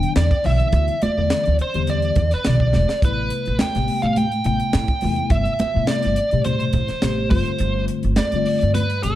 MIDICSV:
0, 0, Header, 1, 6, 480
1, 0, Start_track
1, 0, Tempo, 572519
1, 611, Time_signature, 4, 2, 24, 8
1, 7673, End_track
2, 0, Start_track
2, 0, Title_t, "Lead electric guitar"
2, 0, Program_c, 0, 29
2, 0, Note_on_c, 0, 79, 90
2, 102, Note_off_c, 0, 79, 0
2, 140, Note_on_c, 0, 74, 92
2, 359, Note_off_c, 0, 74, 0
2, 385, Note_on_c, 0, 76, 93
2, 859, Note_off_c, 0, 76, 0
2, 863, Note_on_c, 0, 74, 91
2, 1305, Note_off_c, 0, 74, 0
2, 1357, Note_on_c, 0, 72, 82
2, 1591, Note_on_c, 0, 74, 81
2, 1592, Note_off_c, 0, 72, 0
2, 1960, Note_on_c, 0, 71, 72
2, 1961, Note_off_c, 0, 74, 0
2, 2065, Note_off_c, 0, 71, 0
2, 2071, Note_on_c, 0, 74, 83
2, 2509, Note_off_c, 0, 74, 0
2, 2556, Note_on_c, 0, 71, 84
2, 3027, Note_on_c, 0, 79, 97
2, 3039, Note_off_c, 0, 71, 0
2, 3372, Note_on_c, 0, 77, 82
2, 3399, Note_off_c, 0, 79, 0
2, 3492, Note_off_c, 0, 77, 0
2, 3500, Note_on_c, 0, 79, 93
2, 3720, Note_off_c, 0, 79, 0
2, 3741, Note_on_c, 0, 79, 86
2, 4454, Note_on_c, 0, 76, 94
2, 4479, Note_off_c, 0, 79, 0
2, 4928, Note_off_c, 0, 76, 0
2, 4931, Note_on_c, 0, 74, 82
2, 5378, Note_off_c, 0, 74, 0
2, 5408, Note_on_c, 0, 72, 83
2, 6115, Note_off_c, 0, 72, 0
2, 6125, Note_on_c, 0, 72, 68
2, 6575, Note_off_c, 0, 72, 0
2, 6849, Note_on_c, 0, 74, 108
2, 7297, Note_off_c, 0, 74, 0
2, 7331, Note_on_c, 0, 71, 88
2, 7571, Note_off_c, 0, 71, 0
2, 7575, Note_on_c, 0, 69, 82
2, 7673, Note_off_c, 0, 69, 0
2, 7673, End_track
3, 0, Start_track
3, 0, Title_t, "Tine electric piano"
3, 0, Program_c, 1, 4
3, 0, Note_on_c, 1, 50, 70
3, 0, Note_on_c, 1, 52, 69
3, 0, Note_on_c, 1, 55, 66
3, 0, Note_on_c, 1, 59, 62
3, 0, Note_on_c, 1, 62, 84
3, 230, Note_off_c, 1, 50, 0
3, 231, Note_off_c, 1, 52, 0
3, 234, Note_off_c, 1, 55, 0
3, 238, Note_off_c, 1, 59, 0
3, 239, Note_off_c, 1, 62, 0
3, 368, Note_on_c, 1, 50, 76
3, 369, Note_on_c, 1, 52, 75
3, 374, Note_on_c, 1, 55, 72
3, 382, Note_on_c, 1, 64, 85
3, 383, Note_on_c, 1, 59, 71
3, 794, Note_off_c, 1, 50, 0
3, 794, Note_off_c, 1, 52, 0
3, 797, Note_off_c, 1, 55, 0
3, 801, Note_off_c, 1, 64, 0
3, 802, Note_off_c, 1, 59, 0
3, 979, Note_on_c, 1, 50, 77
3, 981, Note_on_c, 1, 52, 67
3, 987, Note_on_c, 1, 55, 72
3, 991, Note_on_c, 1, 59, 66
3, 995, Note_on_c, 1, 64, 88
3, 1309, Note_off_c, 1, 50, 0
3, 1310, Note_off_c, 1, 52, 0
3, 1313, Note_off_c, 1, 55, 0
3, 1315, Note_off_c, 1, 59, 0
3, 1317, Note_off_c, 1, 64, 0
3, 1459, Note_on_c, 1, 50, 66
3, 1460, Note_on_c, 1, 52, 62
3, 1466, Note_on_c, 1, 55, 64
3, 1467, Note_on_c, 1, 59, 61
3, 1467, Note_on_c, 1, 67, 77
3, 1876, Note_off_c, 1, 50, 0
3, 1876, Note_off_c, 1, 52, 0
3, 1880, Note_off_c, 1, 55, 0
3, 1880, Note_off_c, 1, 59, 0
3, 1880, Note_off_c, 1, 67, 0
3, 2058, Note_on_c, 1, 50, 67
3, 2058, Note_on_c, 1, 52, 65
3, 2060, Note_on_c, 1, 55, 65
3, 2064, Note_on_c, 1, 59, 59
3, 2069, Note_on_c, 1, 64, 82
3, 2398, Note_off_c, 1, 50, 0
3, 2398, Note_off_c, 1, 52, 0
3, 2399, Note_off_c, 1, 55, 0
3, 2401, Note_off_c, 1, 59, 0
3, 2404, Note_off_c, 1, 64, 0
3, 2536, Note_on_c, 1, 48, 70
3, 2543, Note_on_c, 1, 55, 57
3, 2546, Note_on_c, 1, 57, 65
3, 2550, Note_on_c, 1, 59, 62
3, 2554, Note_on_c, 1, 64, 73
3, 2959, Note_off_c, 1, 48, 0
3, 2962, Note_off_c, 1, 55, 0
3, 2963, Note_off_c, 1, 57, 0
3, 2966, Note_off_c, 1, 59, 0
3, 2967, Note_off_c, 1, 64, 0
3, 3142, Note_on_c, 1, 48, 65
3, 3144, Note_on_c, 1, 55, 57
3, 3148, Note_on_c, 1, 57, 57
3, 3151, Note_on_c, 1, 59, 63
3, 3158, Note_on_c, 1, 67, 72
3, 3557, Note_off_c, 1, 48, 0
3, 3558, Note_off_c, 1, 55, 0
3, 3560, Note_off_c, 1, 57, 0
3, 3562, Note_off_c, 1, 59, 0
3, 3565, Note_off_c, 1, 67, 0
3, 3733, Note_on_c, 1, 48, 71
3, 3739, Note_on_c, 1, 55, 67
3, 3743, Note_on_c, 1, 57, 70
3, 3747, Note_on_c, 1, 59, 67
3, 3751, Note_on_c, 1, 64, 78
3, 4075, Note_off_c, 1, 48, 0
3, 4078, Note_off_c, 1, 55, 0
3, 4080, Note_off_c, 1, 57, 0
3, 4082, Note_off_c, 1, 59, 0
3, 4085, Note_off_c, 1, 64, 0
3, 4215, Note_on_c, 1, 48, 82
3, 4221, Note_on_c, 1, 55, 73
3, 4225, Note_on_c, 1, 57, 72
3, 4225, Note_on_c, 1, 59, 77
3, 4235, Note_on_c, 1, 64, 85
3, 4638, Note_off_c, 1, 48, 0
3, 4641, Note_off_c, 1, 55, 0
3, 4643, Note_off_c, 1, 57, 0
3, 4643, Note_off_c, 1, 59, 0
3, 4648, Note_off_c, 1, 64, 0
3, 4813, Note_on_c, 1, 48, 79
3, 4815, Note_on_c, 1, 55, 81
3, 4819, Note_on_c, 1, 57, 74
3, 4824, Note_on_c, 1, 59, 76
3, 4825, Note_on_c, 1, 64, 81
3, 5146, Note_off_c, 1, 48, 0
3, 5147, Note_off_c, 1, 55, 0
3, 5149, Note_off_c, 1, 57, 0
3, 5151, Note_off_c, 1, 59, 0
3, 5152, Note_off_c, 1, 64, 0
3, 5296, Note_on_c, 1, 48, 69
3, 5300, Note_on_c, 1, 55, 64
3, 5308, Note_on_c, 1, 47, 61
3, 5310, Note_on_c, 1, 57, 66
3, 5313, Note_on_c, 1, 67, 79
3, 5714, Note_off_c, 1, 48, 0
3, 5716, Note_off_c, 1, 55, 0
3, 5720, Note_off_c, 1, 47, 0
3, 5721, Note_off_c, 1, 57, 0
3, 5723, Note_off_c, 1, 67, 0
3, 5889, Note_on_c, 1, 48, 69
3, 5893, Note_on_c, 1, 57, 67
3, 5894, Note_on_c, 1, 55, 66
3, 5897, Note_on_c, 1, 59, 65
3, 5907, Note_on_c, 1, 67, 72
3, 6114, Note_off_c, 1, 55, 0
3, 6118, Note_off_c, 1, 57, 0
3, 6119, Note_on_c, 1, 50, 79
3, 6124, Note_on_c, 1, 55, 73
3, 6128, Note_on_c, 1, 57, 68
3, 6131, Note_off_c, 1, 48, 0
3, 6135, Note_off_c, 1, 59, 0
3, 6135, Note_on_c, 1, 60, 70
3, 6138, Note_on_c, 1, 65, 87
3, 6140, Note_off_c, 1, 67, 0
3, 6801, Note_off_c, 1, 50, 0
3, 6804, Note_off_c, 1, 55, 0
3, 6806, Note_off_c, 1, 57, 0
3, 6809, Note_off_c, 1, 60, 0
3, 6810, Note_off_c, 1, 65, 0
3, 6989, Note_on_c, 1, 50, 69
3, 6992, Note_on_c, 1, 57, 71
3, 6993, Note_on_c, 1, 55, 67
3, 6999, Note_on_c, 1, 60, 61
3, 7005, Note_on_c, 1, 65, 79
3, 7401, Note_off_c, 1, 50, 0
3, 7402, Note_off_c, 1, 55, 0
3, 7402, Note_off_c, 1, 57, 0
3, 7406, Note_off_c, 1, 60, 0
3, 7409, Note_off_c, 1, 65, 0
3, 7574, Note_on_c, 1, 50, 66
3, 7581, Note_on_c, 1, 55, 67
3, 7584, Note_on_c, 1, 57, 67
3, 7586, Note_on_c, 1, 60, 73
3, 7596, Note_on_c, 1, 67, 78
3, 7673, Note_off_c, 1, 50, 0
3, 7673, Note_off_c, 1, 55, 0
3, 7673, Note_off_c, 1, 57, 0
3, 7673, Note_off_c, 1, 60, 0
3, 7673, Note_off_c, 1, 67, 0
3, 7673, End_track
4, 0, Start_track
4, 0, Title_t, "Upright bass"
4, 0, Program_c, 2, 32
4, 136, Note_on_c, 2, 40, 88
4, 255, Note_off_c, 2, 40, 0
4, 387, Note_on_c, 2, 35, 91
4, 501, Note_off_c, 2, 35, 0
4, 611, Note_on_c, 2, 38, 108
4, 732, Note_off_c, 2, 38, 0
4, 989, Note_on_c, 2, 40, 85
4, 1090, Note_off_c, 2, 40, 0
4, 1235, Note_on_c, 2, 38, 81
4, 1334, Note_off_c, 2, 38, 0
4, 1470, Note_on_c, 2, 40, 74
4, 1798, Note_off_c, 2, 40, 0
4, 1815, Note_on_c, 2, 40, 87
4, 1935, Note_off_c, 2, 40, 0
4, 2065, Note_on_c, 2, 35, 91
4, 2286, Note_off_c, 2, 35, 0
4, 2308, Note_on_c, 2, 28, 89
4, 2422, Note_off_c, 2, 28, 0
4, 2534, Note_on_c, 2, 33, 82
4, 2760, Note_off_c, 2, 33, 0
4, 2913, Note_on_c, 2, 33, 85
4, 3013, Note_off_c, 2, 33, 0
4, 3151, Note_on_c, 2, 33, 76
4, 3252, Note_off_c, 2, 33, 0
4, 3383, Note_on_c, 2, 45, 76
4, 3715, Note_off_c, 2, 45, 0
4, 3734, Note_on_c, 2, 33, 80
4, 3855, Note_off_c, 2, 33, 0
4, 3980, Note_on_c, 2, 45, 90
4, 4090, Note_off_c, 2, 45, 0
4, 4224, Note_on_c, 2, 40, 98
4, 4340, Note_off_c, 2, 40, 0
4, 4449, Note_on_c, 2, 31, 96
4, 4572, Note_off_c, 2, 31, 0
4, 4831, Note_on_c, 2, 45, 85
4, 4932, Note_off_c, 2, 45, 0
4, 5074, Note_on_c, 2, 31, 82
4, 5173, Note_off_c, 2, 31, 0
4, 5306, Note_on_c, 2, 45, 77
4, 5636, Note_off_c, 2, 45, 0
4, 5651, Note_on_c, 2, 45, 90
4, 5773, Note_off_c, 2, 45, 0
4, 5894, Note_on_c, 2, 33, 89
4, 6120, Note_off_c, 2, 33, 0
4, 6128, Note_on_c, 2, 31, 104
4, 6251, Note_off_c, 2, 31, 0
4, 6374, Note_on_c, 2, 31, 93
4, 6600, Note_off_c, 2, 31, 0
4, 6743, Note_on_c, 2, 31, 83
4, 6848, Note_off_c, 2, 31, 0
4, 6983, Note_on_c, 2, 31, 74
4, 7088, Note_off_c, 2, 31, 0
4, 7234, Note_on_c, 2, 43, 78
4, 7560, Note_off_c, 2, 43, 0
4, 7583, Note_on_c, 2, 31, 86
4, 7673, Note_off_c, 2, 31, 0
4, 7673, End_track
5, 0, Start_track
5, 0, Title_t, "Muted upright bass strokes"
5, 264, Note_on_c, 9, 29, 37
5, 348, Note_off_c, 9, 29, 0
5, 872, Note_on_c, 9, 29, 33
5, 955, Note_off_c, 9, 29, 0
5, 1347, Note_on_c, 9, 29, 38
5, 1431, Note_off_c, 9, 29, 0
5, 1958, Note_on_c, 9, 29, 36
5, 2042, Note_off_c, 9, 29, 0
5, 2437, Note_on_c, 9, 29, 37
5, 2521, Note_off_c, 9, 29, 0
5, 4095, Note_on_c, 9, 29, 37
5, 4179, Note_off_c, 9, 29, 0
5, 4707, Note_on_c, 9, 29, 38
5, 4791, Note_off_c, 9, 29, 0
5, 5185, Note_on_c, 9, 29, 41
5, 5269, Note_off_c, 9, 29, 0
5, 5790, Note_on_c, 9, 29, 40
5, 5874, Note_off_c, 9, 29, 0
5, 6271, Note_on_c, 9, 29, 42
5, 6355, Note_off_c, 9, 29, 0
5, 7673, End_track
6, 0, Start_track
6, 0, Title_t, "Drums"
6, 24, Note_on_c, 9, 42, 41
6, 107, Note_off_c, 9, 42, 0
6, 131, Note_on_c, 9, 42, 78
6, 133, Note_on_c, 9, 38, 105
6, 215, Note_off_c, 9, 42, 0
6, 217, Note_off_c, 9, 38, 0
6, 259, Note_on_c, 9, 36, 81
6, 261, Note_on_c, 9, 42, 35
6, 343, Note_off_c, 9, 36, 0
6, 344, Note_off_c, 9, 42, 0
6, 369, Note_on_c, 9, 46, 77
6, 371, Note_on_c, 9, 38, 31
6, 453, Note_off_c, 9, 46, 0
6, 455, Note_off_c, 9, 38, 0
6, 499, Note_on_c, 9, 42, 33
6, 583, Note_off_c, 9, 42, 0
6, 607, Note_on_c, 9, 42, 78
6, 610, Note_on_c, 9, 36, 96
6, 615, Note_on_c, 9, 62, 27
6, 691, Note_off_c, 9, 42, 0
6, 694, Note_off_c, 9, 36, 0
6, 699, Note_off_c, 9, 62, 0
6, 737, Note_on_c, 9, 42, 37
6, 820, Note_off_c, 9, 42, 0
6, 852, Note_on_c, 9, 42, 60
6, 861, Note_on_c, 9, 62, 29
6, 861, Note_on_c, 9, 63, 94
6, 935, Note_off_c, 9, 42, 0
6, 945, Note_off_c, 9, 62, 0
6, 945, Note_off_c, 9, 63, 0
6, 1091, Note_on_c, 9, 42, 75
6, 1092, Note_on_c, 9, 38, 110
6, 1175, Note_off_c, 9, 42, 0
6, 1176, Note_off_c, 9, 38, 0
6, 1220, Note_on_c, 9, 42, 35
6, 1304, Note_off_c, 9, 42, 0
6, 1332, Note_on_c, 9, 42, 55
6, 1340, Note_on_c, 9, 62, 28
6, 1416, Note_off_c, 9, 42, 0
6, 1424, Note_off_c, 9, 62, 0
6, 1460, Note_on_c, 9, 42, 35
6, 1544, Note_off_c, 9, 42, 0
6, 1570, Note_on_c, 9, 42, 72
6, 1587, Note_on_c, 9, 62, 27
6, 1587, Note_on_c, 9, 64, 68
6, 1653, Note_off_c, 9, 42, 0
6, 1670, Note_off_c, 9, 62, 0
6, 1670, Note_off_c, 9, 64, 0
6, 1696, Note_on_c, 9, 42, 36
6, 1780, Note_off_c, 9, 42, 0
6, 1807, Note_on_c, 9, 42, 67
6, 1812, Note_on_c, 9, 36, 84
6, 1815, Note_on_c, 9, 64, 72
6, 1891, Note_off_c, 9, 42, 0
6, 1896, Note_off_c, 9, 36, 0
6, 1899, Note_off_c, 9, 64, 0
6, 1938, Note_on_c, 9, 42, 41
6, 1939, Note_on_c, 9, 38, 32
6, 2022, Note_off_c, 9, 42, 0
6, 2023, Note_off_c, 9, 38, 0
6, 2049, Note_on_c, 9, 42, 82
6, 2051, Note_on_c, 9, 38, 105
6, 2060, Note_on_c, 9, 63, 63
6, 2133, Note_off_c, 9, 42, 0
6, 2135, Note_off_c, 9, 38, 0
6, 2144, Note_off_c, 9, 63, 0
6, 2180, Note_on_c, 9, 36, 76
6, 2264, Note_off_c, 9, 36, 0
6, 2290, Note_on_c, 9, 38, 54
6, 2296, Note_on_c, 9, 63, 60
6, 2374, Note_off_c, 9, 38, 0
6, 2380, Note_off_c, 9, 63, 0
6, 2423, Note_on_c, 9, 38, 76
6, 2507, Note_off_c, 9, 38, 0
6, 2533, Note_on_c, 9, 62, 28
6, 2535, Note_on_c, 9, 36, 101
6, 2538, Note_on_c, 9, 42, 82
6, 2617, Note_off_c, 9, 62, 0
6, 2619, Note_off_c, 9, 36, 0
6, 2622, Note_off_c, 9, 42, 0
6, 2769, Note_on_c, 9, 42, 69
6, 2779, Note_on_c, 9, 62, 26
6, 2853, Note_off_c, 9, 42, 0
6, 2862, Note_off_c, 9, 62, 0
6, 2897, Note_on_c, 9, 42, 38
6, 2981, Note_off_c, 9, 42, 0
6, 3008, Note_on_c, 9, 63, 97
6, 3009, Note_on_c, 9, 42, 79
6, 3010, Note_on_c, 9, 38, 102
6, 3092, Note_off_c, 9, 63, 0
6, 3093, Note_off_c, 9, 42, 0
6, 3094, Note_off_c, 9, 38, 0
6, 3142, Note_on_c, 9, 42, 39
6, 3144, Note_on_c, 9, 38, 33
6, 3226, Note_off_c, 9, 42, 0
6, 3228, Note_off_c, 9, 38, 0
6, 3251, Note_on_c, 9, 46, 68
6, 3255, Note_on_c, 9, 62, 30
6, 3335, Note_off_c, 9, 46, 0
6, 3339, Note_off_c, 9, 62, 0
6, 3380, Note_on_c, 9, 42, 36
6, 3463, Note_off_c, 9, 42, 0
6, 3490, Note_on_c, 9, 42, 77
6, 3494, Note_on_c, 9, 62, 32
6, 3494, Note_on_c, 9, 63, 72
6, 3574, Note_off_c, 9, 42, 0
6, 3578, Note_off_c, 9, 62, 0
6, 3578, Note_off_c, 9, 63, 0
6, 3619, Note_on_c, 9, 42, 37
6, 3703, Note_off_c, 9, 42, 0
6, 3725, Note_on_c, 9, 42, 64
6, 3809, Note_off_c, 9, 42, 0
6, 3854, Note_on_c, 9, 42, 39
6, 3938, Note_off_c, 9, 42, 0
6, 3966, Note_on_c, 9, 42, 71
6, 3968, Note_on_c, 9, 38, 105
6, 4050, Note_off_c, 9, 42, 0
6, 4052, Note_off_c, 9, 38, 0
6, 4087, Note_on_c, 9, 42, 38
6, 4094, Note_on_c, 9, 36, 73
6, 4171, Note_off_c, 9, 42, 0
6, 4177, Note_off_c, 9, 36, 0
6, 4199, Note_on_c, 9, 46, 69
6, 4211, Note_on_c, 9, 63, 74
6, 4283, Note_off_c, 9, 46, 0
6, 4294, Note_off_c, 9, 63, 0
6, 4329, Note_on_c, 9, 42, 34
6, 4413, Note_off_c, 9, 42, 0
6, 4443, Note_on_c, 9, 42, 76
6, 4446, Note_on_c, 9, 36, 99
6, 4452, Note_on_c, 9, 62, 34
6, 4527, Note_off_c, 9, 42, 0
6, 4530, Note_off_c, 9, 36, 0
6, 4535, Note_off_c, 9, 62, 0
6, 4573, Note_on_c, 9, 42, 38
6, 4657, Note_off_c, 9, 42, 0
6, 4687, Note_on_c, 9, 42, 55
6, 4693, Note_on_c, 9, 62, 33
6, 4693, Note_on_c, 9, 63, 107
6, 4771, Note_off_c, 9, 42, 0
6, 4777, Note_off_c, 9, 62, 0
6, 4777, Note_off_c, 9, 63, 0
6, 4923, Note_on_c, 9, 42, 73
6, 4924, Note_on_c, 9, 38, 108
6, 5007, Note_off_c, 9, 42, 0
6, 5008, Note_off_c, 9, 38, 0
6, 5053, Note_on_c, 9, 42, 39
6, 5054, Note_on_c, 9, 38, 31
6, 5136, Note_off_c, 9, 42, 0
6, 5138, Note_off_c, 9, 38, 0
6, 5165, Note_on_c, 9, 42, 58
6, 5175, Note_on_c, 9, 62, 33
6, 5249, Note_off_c, 9, 42, 0
6, 5258, Note_off_c, 9, 62, 0
6, 5292, Note_on_c, 9, 42, 37
6, 5376, Note_off_c, 9, 42, 0
6, 5403, Note_on_c, 9, 42, 78
6, 5415, Note_on_c, 9, 62, 31
6, 5415, Note_on_c, 9, 64, 68
6, 5487, Note_off_c, 9, 42, 0
6, 5499, Note_off_c, 9, 62, 0
6, 5499, Note_off_c, 9, 64, 0
6, 5533, Note_on_c, 9, 42, 36
6, 5617, Note_off_c, 9, 42, 0
6, 5640, Note_on_c, 9, 42, 64
6, 5647, Note_on_c, 9, 36, 80
6, 5648, Note_on_c, 9, 64, 79
6, 5724, Note_off_c, 9, 42, 0
6, 5731, Note_off_c, 9, 36, 0
6, 5732, Note_off_c, 9, 64, 0
6, 5771, Note_on_c, 9, 42, 40
6, 5773, Note_on_c, 9, 38, 36
6, 5855, Note_off_c, 9, 42, 0
6, 5857, Note_off_c, 9, 38, 0
6, 5884, Note_on_c, 9, 42, 77
6, 5886, Note_on_c, 9, 38, 93
6, 5888, Note_on_c, 9, 63, 66
6, 5968, Note_off_c, 9, 42, 0
6, 5970, Note_off_c, 9, 38, 0
6, 5972, Note_off_c, 9, 63, 0
6, 6124, Note_on_c, 9, 46, 72
6, 6125, Note_on_c, 9, 63, 69
6, 6129, Note_on_c, 9, 36, 90
6, 6208, Note_off_c, 9, 46, 0
6, 6209, Note_off_c, 9, 63, 0
6, 6213, Note_off_c, 9, 36, 0
6, 6252, Note_on_c, 9, 42, 38
6, 6336, Note_off_c, 9, 42, 0
6, 6360, Note_on_c, 9, 42, 84
6, 6373, Note_on_c, 9, 62, 28
6, 6444, Note_off_c, 9, 42, 0
6, 6457, Note_off_c, 9, 62, 0
6, 6606, Note_on_c, 9, 42, 68
6, 6614, Note_on_c, 9, 62, 31
6, 6690, Note_off_c, 9, 42, 0
6, 6698, Note_off_c, 9, 62, 0
6, 6731, Note_on_c, 9, 42, 41
6, 6815, Note_off_c, 9, 42, 0
6, 6842, Note_on_c, 9, 42, 84
6, 6843, Note_on_c, 9, 38, 100
6, 6849, Note_on_c, 9, 63, 94
6, 6925, Note_off_c, 9, 42, 0
6, 6927, Note_off_c, 9, 38, 0
6, 6933, Note_off_c, 9, 63, 0
6, 6974, Note_on_c, 9, 42, 40
6, 7058, Note_off_c, 9, 42, 0
6, 7090, Note_on_c, 9, 46, 74
6, 7094, Note_on_c, 9, 62, 29
6, 7174, Note_off_c, 9, 46, 0
6, 7178, Note_off_c, 9, 62, 0
6, 7221, Note_on_c, 9, 42, 40
6, 7305, Note_off_c, 9, 42, 0
6, 7332, Note_on_c, 9, 42, 85
6, 7334, Note_on_c, 9, 62, 28
6, 7334, Note_on_c, 9, 63, 77
6, 7416, Note_off_c, 9, 42, 0
6, 7418, Note_off_c, 9, 62, 0
6, 7418, Note_off_c, 9, 63, 0
6, 7459, Note_on_c, 9, 42, 38
6, 7543, Note_off_c, 9, 42, 0
6, 7572, Note_on_c, 9, 42, 70
6, 7656, Note_off_c, 9, 42, 0
6, 7673, End_track
0, 0, End_of_file